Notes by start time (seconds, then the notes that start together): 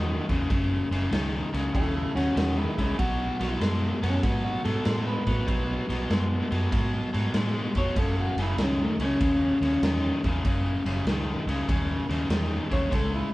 Already playing: E2 F#2 D#3 F#4
0.29 E2 F#2 C#3, kick, snare, ride
0.50 F#1 F#2 C#3, kick, snare, ride
0.91 F#1 F#2 C#3, snare, ride
1.11 C#2 F#2 D#3, snare, ride
1.53 C#2 F#2 C#3, snare, ride
1.73 D#2 F#2 C#3 E4 A4, kick, ride
1.95 E4 A4
2.15 D#2 F#2 C#3 C#4 F#4, snare, ride
2.35 E2 F#2 D#3 C#4 F#4, snare, ride
2.57 G#3 E4
2.76 C#2 F#2 C#3 G#3 E4, kick, snare, ride
2.98 B1 B2 F#3 F#4, kick, ride
3.40 B1 B2 F#3, snare, ride
3.60 F#2 B2 G#3, snare, ride
4.02 F#2 B2 F#3 C#4, snare, ride
4.23 G#2 B2 F#3 B3, kick, snare, ride
4.44 F#4
4.64 G#2 B2 F#3 A4, snare, ride
4.85 A2 B2 G#3, snare, ride
5.07 B4
5.27 A2 B2 F#3, kick, snare, ride
5.47 B1 B2 F#3, kick, ride
5.89 B1 B2 F#3, snare, ride
6.09 F#2 B2 G#3, snare, ride
6.51 F#2 B2 F#3, snare, ride
6.71 G#2 B2 F#3, kick, snare, ride
7.13 G#2 B2 F#3, snare, ride
7.34 A2 B2 G#3, snare, ride
7.75 F1 B2 F#3 C#5, kick, snare, ride
7.96 F#1 F#2 C#3 A4, kick, snare, ride
8.20 F#4
8.36 F#1 F#2 C#3, snare, ride
8.42 E4
8.57 C#2 F#2 D#3, snare, ride
8.63 C#4
8.83 A3
8.98 C#2 F#2 C#3, snare, ride
9.03 C#4
9.20 D#2 F#2 C#3, kick, snare, ride
9.61 D#2 F#2 C#3, snare, ride
9.81 E2 F#2 D#3, snare, ride
10.24 E2 F#2 C#3, kick, snare, ride
10.45 F#1 F#2 C#3, kick, ride
10.84 F#1 F#2 C#3, snare, ride
11.05 C#2 F#2 D#3, snare, ride
11.46 C#2 F#2 C#3, snare, ride
11.68 D#2 F#2 C#3, kick, ride
12.09 D#2 F#2 C#3, snare, ride
12.29 E2 F#2 D#3, snare, ride
12.70 D#2 F#2 C#3 C#5, kick, snare, ride
12.90 C#2 C#3 G#3, kick, snare, ride
12.95 A4
13.15 E4